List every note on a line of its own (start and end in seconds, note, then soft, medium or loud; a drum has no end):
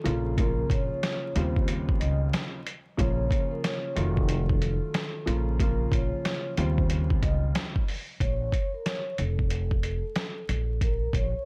0.00 0.35 C#3 medium
0.00 0.34 A4 medium
0.04 0.61 A#1 loud
0.04 0.35 F3 medium
0.04 0.36 A#3 medium
0.04 0.36 F4 loud
0.04 closed hi-hat medium
0.38 1.30 C#3 medium
0.38 1.30 F3 medium
0.38 1.30 A#3 medium
0.38 1.31 F4 loud
0.38 0.68 A#4 loud
0.38 kick loud
0.38 closed hi-hat loud
0.70 0.88 A#1 medium
0.70 1.32 C#5 medium
0.70 kick loud
0.70 closed hi-hat medium
1.03 snare loud
1.03 snare medium
1.03 closed hi-hat loud
1.35 2.58 D#2 medium
1.35 1.92 D#2 loud
1.35 2.58 C#3 medium
1.35 2.58 G3 medium
1.35 2.59 C4 medium
1.35 2.59 F4 loud
1.35 1.65 C5 medium
1.35 closed hi-hat medium
1.56 kick loud
1.68 closed hi-hat loud
1.89 kick loud
2.00 2.29 C#2 medium
2.00 2.19 D#5 medium
2.00 closed hi-hat medium
2.33 snare loud
2.33 snare medium
2.33 closed hi-hat medium
2.67 closed hi-hat medium
2.97 3.27 A#1 loud
2.97 3.90 C#3 loud
2.97 3.90 F3 medium
2.97 3.90 A#3 medium
2.97 3.91 F4 loud
2.97 3.48 C#5 medium
2.97 kick loud
2.97 closed hi-hat loud
3.31 kick loud
3.31 closed hi-hat medium
3.51 3.63 A#4 medium
3.64 3.94 C#5 medium
3.64 snare loud
3.64 snare medium
3.64 closed hi-hat loud
3.96 4.78 F1 loud
3.96 5.27 D#3 loud
3.96 5.27 F#3 medium
3.96 5.27 A3 medium
3.96 5.25 F4 loud
3.96 4.58 A4 medium
3.96 closed hi-hat medium
4.17 kick loud
4.29 closed hi-hat loud
4.49 kick loud
4.62 5.56 A4 medium
4.62 closed hi-hat medium
4.94 snare loud
4.94 snare medium
4.94 closed hi-hat medium
5.26 5.83 A#1 loud
5.26 5.57 C#3 medium
5.26 5.57 F3 medium
5.26 5.58 A#3 medium
5.26 5.58 F4 loud
5.26 closed hi-hat medium
5.60 6.52 C#3 medium
5.60 6.52 F3 medium
5.60 6.52 A#3 medium
5.60 6.52 F4 loud
5.60 5.89 A#4 loud
5.60 kick loud
5.60 closed hi-hat loud
5.92 6.10 A#1 medium
5.92 6.54 C#5 medium
5.92 kick loud
5.92 closed hi-hat medium
6.25 snare loud
6.25 snare medium
6.25 closed hi-hat loud
6.57 7.80 D#2 medium
6.57 7.14 D#2 loud
6.57 7.80 C#3 medium
6.57 7.80 G3 medium
6.57 7.80 C4 medium
6.57 7.81 F4 loud
6.57 6.87 C5 medium
6.57 closed hi-hat medium
6.78 kick medium
6.90 closed hi-hat loud
7.10 kick loud
7.22 7.51 C#2 medium
7.22 7.41 D#5 medium
7.22 kick loud
7.22 closed hi-hat medium
7.55 snare loud
7.55 snare medium
7.55 closed hi-hat medium
7.76 kick medium
7.88 open hi-hat medium
8.20 8.49 A#1 loud
8.20 8.70 C#5 medium
8.20 kick loud
8.20 closed hi-hat loud
8.52 kick loud
8.52 closed hi-hat medium
8.74 8.85 A#4 medium
8.86 9.15 C#5 medium
8.86 snare loud
8.86 snare medium
8.86 closed hi-hat loud
9.18 10.00 F1 loud
9.18 9.80 A4 medium
9.18 closed hi-hat medium
9.39 kick medium
9.50 closed hi-hat loud
9.71 kick loud
9.83 10.77 A4 medium
9.83 closed hi-hat medium
10.16 snare loud
10.16 snare medium
10.16 closed hi-hat medium
10.49 11.05 A#1 loud
10.49 closed hi-hat medium
10.81 11.12 A#4 loud
10.81 kick loud
10.81 closed hi-hat loud
11.13 11.31 A#1 medium
11.13 11.45 C#5 medium
11.13 kick loud
11.13 closed hi-hat medium